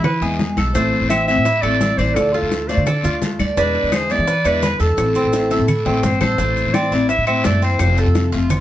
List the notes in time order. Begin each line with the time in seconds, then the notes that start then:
Already playing: E3 E4
0.04 B4, muted steel-string acoustic guitar stroke, high bongo, high conga, low conga, long guiro, claves
0.21 E2 E3 G#3 B3 E4 G#4, high bongo, high conga
0.39 E3 G#3 B3 E4, high bongo, low bongo, high conga, short guiro
0.57 B1 A4, high conga, short guiro, claves
0.75 A1 E3 A3 C4 E4 C5, high bongo, long guiro, maracas
0.93 high bongo, high conga
1.01 A1
1.09 E3 A3 C4 E5, high bongo, high conga, short guiro, claves, maracas
1.27 A3 C4 E4 E5, high bongo, high conga, short guiro, maracas
1.36 A2
1.45 E4, muted steel-string acoustic guitar stroke, high bongo, high conga, long guiro, maracas
1.62 A1 A3 C4 E4 D5, high bongo, high conga, claves
1.81 E3 A3 C4 E4, high bongo, low bongo, high conga, short guiro, maracas
1.97 A1 C5 D5, high conga, short guiro, maracas
2.15 D2 D3 A3 D4 F4 A4, high bongo, high conga, long guiro, claves, maracas
2.33 F4 A4, high bongo, high conga
2.42 D2
2.51 D3 A3 D4 F4, high bongo, high conga, short guiro, maracas
2.68 A3 D4 F4 C5 D5, high bongo, short guiro, maracas
2.77 D3
2.86 A4 D5, muted steel-string acoustic guitar stroke, high bongo, high conga, low conga, long guiro, claves, maracas
3.03 D2 A3 D4 F4, high bongo, high conga, low conga, maracas
3.22 D3 A3 D4 F4, high bongo, low bongo, high conga, short guiro, maracas
3.39 D2 D5, high conga, short guiro, claves, maracas
3.57 E2 B2 D3 G#3 B3 D4 E4 B4, high bongo, high conga, long guiro, maracas
3.75 high bongo, high conga
3.83 E2
3.92 D3 G#3 B3 E4 G#4 C5, high bongo, high conga, short guiro, claves, maracas
4.09 D3 G#3 B3 E4 D5, high bongo, high conga, short guiro, maracas
4.19 E3
4.27 B4, muted steel-string acoustic guitar stroke, high bongo, high conga, long guiro, maracas
4.45 E2 D3 G#3 B3 D4 E4 B4, high bongo, high conga, claves, maracas
4.62 D3 G#3 B3 E4 B4, high bongo, low bongo, high conga, short guiro, maracas
4.80 E2 A4, short guiro, maracas
4.97 A1 E3 A3 C4 E4, high bongo, high conga, long guiro, claves, maracas
5.15 C4, high bongo, high conga, maracas
5.24 A1
5.33 E3 A3 C4 E4, high bongo, high conga, short guiro, maracas
5.51 A3 C4 E4 A4, high bongo, short guiro, maracas
5.59 A2
5.68 E4, muted steel-string acoustic guitar stroke, high conga, low conga, long guiro, claves, maracas
5.85 A1 A3 C4 E4, low bongo, high conga
6.03 G1 E3 A3 C4 E4 C5, low bongo, high conga, short guiro, maracas
6.21 A1 A4 C5, low bongo, high conga, short guiro, claves, maracas
6.38 A1 E3 A3 C4 E4, high bongo, high conga, long guiro, maracas
6.57 high conga, maracas
6.65 A2
6.74 C4 D5, high bongo, high conga, short guiro, claves, maracas
6.91 A1 A3 C4 E4, high conga, short guiro, maracas
7.09 E5, muted steel-string acoustic guitar stroke, high bongo, high conga, long guiro, maracas
7.18 A2
7.26 A3 C4 E4 E5, high conga, claves, maracas
7.44 F#1 E3 A3 C4 E4 D5, high bongo, low bongo, high conga, short guiro, maracas
7.62 C4 C5, short guiro, maracas
7.79 F1 C3 F3 A3 C4 F4 C5, high bongo, high conga, long guiro, claves, maracas
7.97 A4, high conga, maracas
8.06 F2
8.15 high bongo, high conga, short guiro, maracas
8.32 F1 F3 A3 C4 F4, high bongo, high conga, short guiro, maracas
8.50 muted steel-string acoustic guitar stroke, high bongo, high conga, low conga, long guiro, claves, maracas